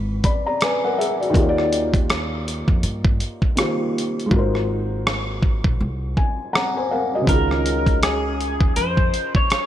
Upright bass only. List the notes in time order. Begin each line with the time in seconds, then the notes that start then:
Already playing: G#1
1.35 D#2
2.68 F2
2.83 G2
4.32 G#1
5.65 A#1
5.80 C2
7.28 C#2
8.61 D#2
8.77 F2